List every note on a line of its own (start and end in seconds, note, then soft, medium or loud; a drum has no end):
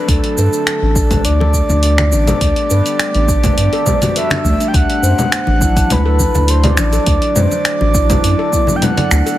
0.00 4.70 A3 medium
0.00 0.10 B4 medium
0.08 0.19 D2 loud
0.08 4.71 D3 medium
0.08 4.70 G3 medium
0.08 4.70 B3 medium
0.08 0.36 D4 medium
0.08 4.71 G4 medium
0.08 1.26 A4 loud
0.08 kick loud
0.08 open hi-hat medium
0.08 cabasa soft
0.24 open hi-hat soft
0.37 0.48 G2 medium
0.37 0.47 B4 medium
0.37 muted conga soft
0.37 cabasa medium
0.53 cabasa soft
0.67 finger snap medium
0.67 open hi-hat medium
0.67 cabasa soft
0.82 1.27 A1 medium
0.82 0.90 D4 medium
0.95 1.10 D4 loud
0.95 kick loud
0.95 muted conga medium
0.95 cabasa medium
1.11 kick medium
1.11 open hi-hat soft
1.11 high conga soft
1.11 low conga medium
1.11 cabasa soft
1.24 1.62 D2 medium
1.24 4.16 D5 loud
1.24 open hi-hat medium
1.24 cabasa soft
1.40 1.54 A4 loud
1.40 muted conga medium
1.40 high conga medium
1.54 kick medium
1.54 cabasa medium
1.69 2.14 D2 medium
1.69 1.97 D4 medium
1.69 high conga medium
1.69 low conga medium
1.69 cabasa soft
1.83 open hi-hat medium
1.83 cabasa soft
1.98 2.11 D5 medium
1.98 finger snap medium
1.98 open hi-hat soft
1.98 low conga medium
2.12 2.33 A1 medium
2.12 2.27 D4 loud
2.12 muted conga medium
2.12 cabasa medium
2.27 2.40 A4 medium
2.27 open hi-hat soft
2.27 high conga medium
2.27 low conga medium
2.27 cabasa soft
2.41 2.51 D2 loud
2.41 2.70 D4 medium
2.41 kick loud
2.41 open hi-hat medium
2.41 cabasa soft
2.56 open hi-hat soft
2.70 2.81 G2 medium
2.70 2.79 B4 medium
2.70 muted conga soft
2.70 cabasa medium
2.86 open hi-hat soft
2.86 cabasa soft
2.99 finger snap medium
2.99 open hi-hat medium
2.99 cabasa soft
3.14 3.51 A1 medium
3.14 3.23 D4 medium
3.14 open hi-hat soft
3.28 3.43 D4 medium
3.28 kick loud
3.28 muted conga medium
3.28 cabasa medium
3.43 kick loud
3.43 open hi-hat soft
3.43 high conga soft
3.43 low conga medium
3.43 cabasa soft
3.58 3.68 G2 medium
3.58 open hi-hat medium
3.58 swell medium
3.58 cabasa soft
3.73 3.86 A4 loud
3.73 open hi-hat soft
3.86 kick medium
3.86 muted conga soft
3.86 low conga medium
3.86 cabasa medium
4.02 4.15 F#4 medium
4.02 open hi-hat soft
4.02 high conga medium
4.02 low conga medium
4.02 cabasa soft
4.16 4.30 B4 medium
4.16 4.69 E5 loud
4.16 open hi-hat medium
4.16 cabasa soft
4.30 4.44 D4 medium
4.30 finger snap medium
4.30 open hi-hat soft
4.30 muted conga medium
4.30 low conga medium
4.45 4.55 D2 medium
4.45 4.60 A3 loud
4.45 kick medium
4.45 high conga medium
4.45 cabasa medium
4.60 4.73 D4 medium
4.60 open hi-hat soft
4.60 cabasa soft
4.68 4.77 G5 medium
4.73 4.85 D2 loud
4.73 9.36 D3 medium
4.73 9.36 F#3 medium
4.73 9.38 A3 medium
4.73 5.02 D4 medium
4.73 9.36 F#4 medium
4.73 5.93 F#5 loud
4.73 kick loud
4.73 open hi-hat medium
4.73 cabasa soft
4.90 open hi-hat soft
5.03 5.13 F#2 medium
5.03 5.12 C5 medium
5.03 cabasa medium
5.19 muted conga medium
5.19 low conga medium
5.19 cabasa soft
5.32 finger snap medium
5.32 open hi-hat medium
5.32 cabasa soft
5.47 5.92 A1 medium
5.47 5.56 D4 medium
5.47 muted conga medium
5.59 7.90 F#3 medium
5.59 5.76 D4 loud
5.59 kick loud
5.59 cabasa medium
5.64 7.92 E4 medium
5.76 kick loud
5.76 open hi-hat soft
5.76 cabasa soft
5.90 6.27 D2 medium
5.90 6.51 B4 loud
5.90 open hi-hat medium
5.90 low conga medium
5.90 cabasa soft
6.05 6.19 A4 loud
6.19 kick medium
6.19 high conga medium
6.19 cabasa medium
6.34 6.80 D2 medium
6.34 6.63 D4 medium
6.34 low conga medium
6.34 cabasa soft
6.48 6.81 C5 medium
6.48 open hi-hat medium
6.48 cabasa soft
6.64 6.77 D5 medium
6.64 open hi-hat soft
6.64 low conga medium
6.77 6.98 A1 medium
6.77 6.93 D4 medium
6.77 8.77 D5 loud
6.77 finger snap medium
6.77 high conga medium
6.77 cabasa medium
6.93 7.06 A4 medium
6.93 open hi-hat soft
6.93 cabasa soft
7.06 7.17 D2 loud
7.06 7.35 D4 medium
7.06 kick loud
7.06 open hi-hat medium
7.06 cabasa soft
7.22 open hi-hat soft
7.36 7.47 F#2 medium
7.36 7.45 C5 medium
7.36 high conga soft
7.36 low conga medium
7.36 cabasa medium
7.51 muted conga medium
7.51 cabasa soft
7.65 finger snap medium
7.65 open hi-hat medium
7.65 cabasa soft
7.81 8.17 A1 medium
7.81 7.89 D4 medium
7.81 muted conga medium
7.94 8.49 F#3 medium
7.94 8.09 D4 loud
7.94 8.50 E4 medium
7.94 kick loud
7.94 cabasa medium
8.10 kick loud
8.10 open hi-hat soft
8.10 low conga medium
8.10 low conga loud
8.10 cabasa soft
8.24 8.34 F#2 medium
8.24 open hi-hat medium
8.24 cabasa soft
8.39 8.52 A4 loud
8.51 9.38 F#3 medium
8.51 9.38 B3 medium
8.51 kick medium
8.51 muted conga soft
8.51 cabasa medium
8.55 9.38 E4 medium
8.67 8.96 D4 medium
8.67 high conga medium
8.67 low conga medium
8.67 cabasa soft
8.76 8.85 G5 medium
8.82 9.38 F#5 loud
8.82 open hi-hat medium
8.82 low conga medium
8.82 cabasa soft
8.97 9.10 D5 medium
8.97 open hi-hat soft
8.97 low conga loud
9.11 9.22 D2 medium
9.11 9.26 D4 loud
9.11 finger snap medium
9.11 muted conga soft
9.11 high conga medium
9.11 cabasa medium
9.26 9.38 A4 loud
9.26 open hi-hat soft
9.26 cabasa soft